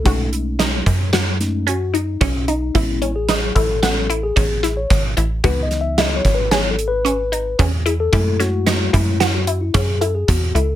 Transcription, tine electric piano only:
<<
  \new Staff \with { instrumentName = "Tine electric piano" } { \time 5/4 \key cis \minor \tempo 4 = 112 a'8 r2 r8 fis'8 dis'8 cis'8 dis'8 | e'8. gis'8. a'4~ a'16 gis'4 cis''8 r8. | \tuplet 3/2 { b'8 dis''8 e''8 dis''8 cis''8 b'8 cis''8 a'8 b'8~ } b'4~ b'16 r16 gis'16 a'16~ | a'8 fis'4 r8. fis'8 e'16 gis'8 a'16 gis'16 fis'8 a'8 | }
  \new Staff \with { instrumentName = "Tine electric piano" } { \time 5/4 \key cis \minor <gis a cis' dis'>4. r4 <gis a cis' dis'>8 r2 | <gis b cis'>8 r4. <gis b cis'>8 r2 r8 | <e b dis'>4. r8 <e b dis'>8 r2 r8 | <gis a e'>4. <gis a e'>8 r2. | }
>>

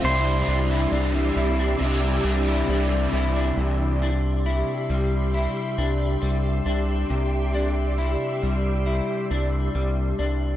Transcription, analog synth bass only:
\new Staff \with { instrumentName = "Analog synth bass" } { \clef bass \time 4/4 \key c \major \tempo 4 = 68 c,8 c,8 c,8 c,8 c,8 c,8 c,8 c,8 | c,4~ c,16 r16 c,8. r16 c,8 c,8 c,8 | c,4~ c,16 r16 c,8. r16 c,8 c,8 c,8 | }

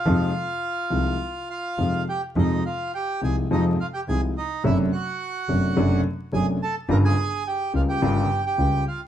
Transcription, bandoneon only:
\new Staff \with { instrumentName = "Bandoneon" } { \time 4/4 \key f \minor \tempo 4 = 106 <f' f''>2~ <f' f''>8 <f' f''>4 <g' g''>8 | <ees' ees''>8 <f' f''>8 <g' g''>8 <aes' aes''>8 <ees' ees''>8 <f' f''>16 <g' g''>16 <aes' aes''>8 <ees' ees''>8 | <e' e''>8 <fis' fis''>2 r8 <aes' aes''>8 <a' a''>8 | <bes' bes''>16 <aes' aes''>8. <g' g''>8 <f' f''>16 <g' g''>4 <g' g''>8. <f' f''>8 | }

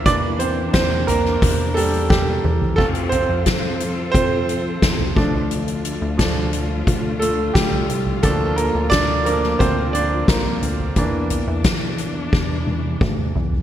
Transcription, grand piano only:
<<
  \new Staff \with { instrumentName = "Grand piano" } { \time 4/4 \key d \minor \tempo 4 = 88 d''8 <c' c''>8 <c' c''>8 <bes bes'>4 <g a'>8 <g g'>4 | a'8 <c' c''>4 r8 <c' c''>4. r8 | r2 r8 <a a'>8 <g g'>4 | <a a'>8 <bes bes'>8 <d' d''>8 bes'8 <c' c''>8 <d' d''>8 <bes bes'>8. r16 |
r1 | }
  \new Staff \with { instrumentName = "Grand piano" } { \time 4/4 \key d \minor <e bes d'>4. r2 r8 | <a c' f'>2.~ <a c' f'>8 <f a d'>8 | r4 <f a d'>8 r2 r8 | <f bes d'>4. <f bes d'>8 r2 |
<e bes d'>8 r2. r8 | }
>>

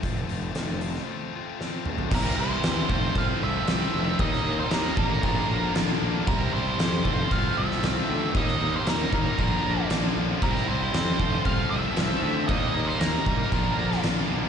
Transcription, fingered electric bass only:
\new Staff \with { instrumentName = "Fingered electric bass" } { \clef bass \time 4/4 \key f \major \tempo 4 = 116 f,,8 f,,8 f,,4 r2 | c,8 c,8 e,8 f,,8 c,8 c,8 c,8 f,,8 | ees,8 ees,8 ees,8 a,,8 bes,,8 bes,,8 bes,,8 bes,,8 | c,8 c,8 f,8 f,,8 c,8 c,8 c,8 d,8 |
ees,8 ees,8 ees,8 ees,8 bes,,8 bes,,8 bes,,8 bes,,8 | c,8 c,8 f,8 f,,8 c,8 c,8 c,8 d,8 | ees,8 ees,8 ees,8 c,8 bes,,8 bes,,8 bes,,8 b,,8 | }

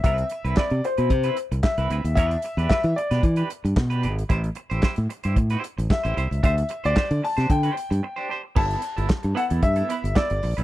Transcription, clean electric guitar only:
\new Staff \with { instrumentName = "Clean electric guitar" } { \time 4/4 \key g \major \tempo 4 = 113 <c' e' b'>16 r8 <c' e' b'>16 <c' e' b'>16 r8 <c' e' b'>16 r16 <c' e' b'>16 r8. <c' e' b'>16 <c' e' b'>16 r16 | <d' g' b'>16 r8 <d' g' b'>16 <d' g' b'>16 r8 <d' g' b'>16 r16 <d' g' b'>16 r8. <d' g' b'>16 <d' g' b'>16 r16 | <e' g' c''>16 r8 <e' g' c''>16 <e' g' c''>16 r8 <e' g' c''>16 r16 <e' g' c''>16 r8. <e' g' c''>16 <e' g' c''>16 r16 | <d' g' c''>16 r8 <d' g' c''>16 <d' g' c''>16 r8 <d' g' c''>16 r16 <d' g' c''>16 r8. <d' g' c''>16 <d' g' c''>16 r16 |
<b e' a'>8 r16 <b e' a'>16 r8 <b e' a'>16 <b e' a'>16 r16 <b e' a'>16 <b e' b'>16 r16 <b e' a'>16 r8 <b e' b'>16 | }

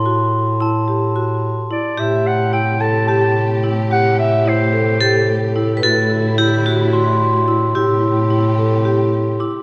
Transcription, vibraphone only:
\new Staff \with { instrumentName = "Vibraphone" } { \time 7/8 \key a \dorian \tempo 4 = 109 a'2. r8 | g'2.~ g'8~ | g'2 a'4~ a'16. b'32 | a'4 g'8 fis'2 |
e'2. r8 | }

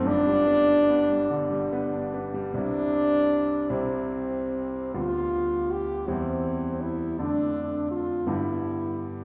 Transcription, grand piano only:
\new Staff \with { instrumentName = "Grand piano" } { \clef bass \time 6/8 \key c \major \tempo 4. = 52 <g,, g,>16 g16 b16 d'16 b16 g16 d16 g16 b16 d'16 b16 g16 | <c, g c' e'>4. <c, g c' e'>4. | <d, g b f'>4. <e, g c' e'>4. | <f, d a d'>4. <g, d g b>4. | }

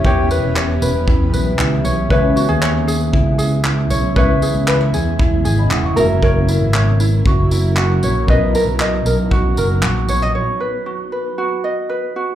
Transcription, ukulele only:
\new Staff \with { instrumentName = "Ukulele" } { \time 4/4 \key b \major \tempo 4 = 116 <e' g' b' cis''>8 b'8 cis''8 b'8 e'8 b'8 e'8 cis''8 | <b' cis''>8 fis'16 gis'16 cis''8 gis'8 e'8 gis'8 e'8 cis''8 | <b' cis''>8 gis'8 b'16 cis''16 gis'8 e'8 gis'8 e'8 ais'8 | <ais' cis''>8 e'8 cis''8 e'8 fis'8 e'8 fis'8 cis''8 |
<b' dis''>8 ais'8 dis''8 ais'8 fis'8 ais'8 fis'8 cis''16 dis''16 | cis''8 b'8 fis'8 b'8 fis'8 dis''8 b'8 fis'8 | }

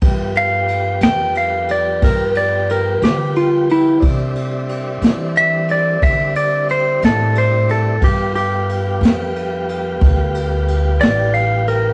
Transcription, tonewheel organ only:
\new Staff \with { instrumentName = "Tonewheel organ" } { \time 12/8 \key g \mixolydian \tempo 4. = 60 <f g b g'>1. | <g c' d' e'>1. | <g b f' g'>1. | }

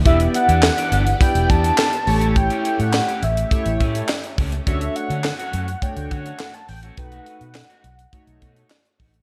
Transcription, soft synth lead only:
\new Staff \with { instrumentName = "Soft synth lead" } { \time 4/4 \key e \dorian \tempo 4 = 104 e''8 fis''4. g''8 a''4. | g''8. fis''8. e''2 r8 | e''8 fis''4. g''16 g''16 fis''8. a''16 g''8 | fis''2. r4 | }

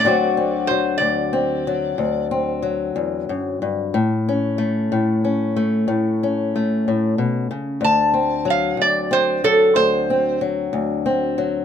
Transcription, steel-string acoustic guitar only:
\new Staff \with { instrumentName = "Steel-string acoustic guitar" } { \clef bass \time 12/8 \key d \mixolydian \tempo 4. = 62 << { <d fis c' fis'>8 c'8 fis4 c'8 fis4 c'8 fis2 | r8 cis'8 a4 cis'8 a4 cis'8 a2 | r8 c'8 fis4 c'8 fis4 c'8 fis4 c'8 fis8 | } \\ { d,4. d,4. d,4. e,8 fis,8 g,8 | a,4. a,4. a,4. a,8 b,8 cis8 | d,4. d,4. d,4. d,4. | } >> }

